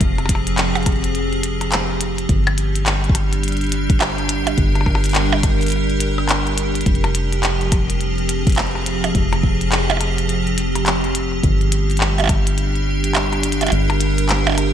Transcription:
Already playing: ambient pad F3 C4 G4 G#4
0.01 analog synth bass F1, kick, closed hi-hat
0.18 closed hi-hat, percussion blips
0.26 kick, closed hi-hat, percussion blips
0.35 percussion blips
0.47 closed hi-hat
0.58 clap, closed hi-hat
0.75 closed hi-hat, percussion blips
0.83 closed hi-hat
0.86 kick, closed hi-hat, percussion blips
0.92 closed hi-hat
0.96 closed hi-hat
1.04 closed hi-hat
1.15 closed hi-hat
1.33 closed hi-hat
1.43 closed hi-hat
1.61 closed hi-hat, percussion blips
1.72 clap, closed hi-hat
2.01 closed hi-hat
2.18 closed hi-hat
2.29 analog synth bass G1, ambient pad G3, kick, closed hi-hat
2.47 closed hi-hat, percussion blips
2.58 closed hi-hat
2.70 ambient pad D4
2.75 closed hi-hat
2.86 clap, closed hi-hat
3.04 closed hi-hat
3.09 kick
3.15 closed hi-hat, percussion blips
3.33 closed hi-hat
3.43 closed hi-hat
3.48 closed hi-hat
3.52 closed hi-hat
3.57 closed hi-hat
3.61 closed hi-hat
3.64 closed hi-hat
3.67 closed hi-hat
3.69 closed hi-hat
3.72 closed hi-hat
3.90 kick, closed hi-hat
4.01 clap, closed hi-hat, percussion blips
4.11 ambient pad A#4
4.18 closed hi-hat
4.29 closed hi-hat
4.47 closed hi-hat, percussion blips
4.58 analog synth bass G1, kick, closed hi-hat
4.75 closed hi-hat, percussion blips
4.81 percussion blips
4.86 kick, percussion blips
4.95 percussion blips
5.04 closed hi-hat
5.06 closed hi-hat
5.09 closed hi-hat
5.11 closed hi-hat
5.13 clap, closed hi-hat
5.15 closed hi-hat
5.32 percussion blips
5.43 kick, closed hi-hat, percussion blips
5.61 closed hi-hat
5.63 closed hi-hat
5.67 closed hi-hat
5.68 closed hi-hat
5.70 closed hi-hat
5.72 closed hi-hat
5.90 closed hi-hat
6.00 closed hi-hat
6.18 percussion blips
6.29 clap, closed hi-hat
6.47 closed hi-hat
6.58 closed hi-hat
6.75 closed hi-hat
6.81 closed hi-hat
6.86 analog synth bass F1, ambient pad F3, kick, closed hi-hat
6.95 closed hi-hat
7.04 closed hi-hat, percussion blips
7.15 closed hi-hat
7.23 ambient pad C4
7.33 closed hi-hat
7.43 clap, closed hi-hat
7.61 closed hi-hat
7.72 ambient pad G#4, kick, closed hi-hat, percussion blips
7.90 closed hi-hat
8.01 closed hi-hat
8.18 closed hi-hat
8.29 closed hi-hat
8.47 kick, closed hi-hat
8.50 closed hi-hat
8.52 closed hi-hat
8.55 clap, closed hi-hat
8.58 closed hi-hat, percussion blips
8.62 closed hi-hat
8.67 closed hi-hat
8.71 closed hi-hat
8.75 percussion blips
8.86 closed hi-hat
9.04 closed hi-hat, percussion blips
9.15 analog synth bass F1, kick, closed hi-hat
9.33 closed hi-hat, percussion blips
9.43 kick
9.61 closed hi-hat
9.72 clap, closed hi-hat
9.90 closed hi-hat, percussion blips
9.97 closed hi-hat, percussion blips
10.01 percussion blips
10.18 closed hi-hat
10.29 closed hi-hat
10.47 closed hi-hat
10.58 closed hi-hat
10.75 closed hi-hat, percussion blips
10.86 clap, closed hi-hat
11.04 closed hi-hat
11.15 closed hi-hat
11.43 analog synth bass G1, ambient pad G3, kick, closed hi-hat
11.61 closed hi-hat
11.72 closed hi-hat
11.90 ambient pad D4, closed hi-hat
11.97 clap, closed hi-hat
12.18 closed hi-hat, percussion blips
12.20 closed hi-hat, percussion blips
12.24 closed hi-hat, percussion blips
12.26 closed hi-hat, percussion blips
12.27 kick, closed hi-hat, percussion blips
12.29 closed hi-hat, percussion blips
12.47 closed hi-hat
12.58 closed hi-hat
12.75 closed hi-hat
13.04 closed hi-hat
13.15 clap, closed hi-hat, percussion blips
13.33 closed hi-hat, percussion blips
13.41 ambient pad A#4, closed hi-hat
13.52 closed hi-hat
13.61 closed hi-hat, percussion blips
13.63 closed hi-hat, percussion blips
13.67 percussion blips
13.68 percussion blips
13.70 analog synth bass G1, closed hi-hat, percussion blips
13.90 closed hi-hat, percussion blips
14.01 closed hi-hat
14.18 closed hi-hat
14.29 clap, closed hi-hat
14.47 closed hi-hat, percussion blips
14.50 percussion blips
14.52 percussion blips
14.55 closed hi-hat, percussion blips
14.58 percussion blips

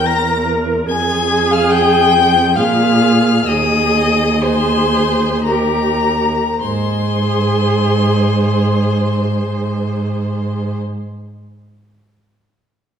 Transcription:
Already playing: cello E2
0.06 viola A#4, violin A#5 A#6
0.86 cello F2, viola G#4, violin G#5 G#6
1.51 violin F5 F6
1.70 violin G5 G6
2.56 cello A#2, viola G#4, violin F5 F6
3.46 cello D#2, viola G#4, violin D#5 D#6
4.41 viola G#4, violin C5 C6
5.44 viola G4, violin A#4 A#5
6.59 cello G#2, viola G#4, violin C5 C6

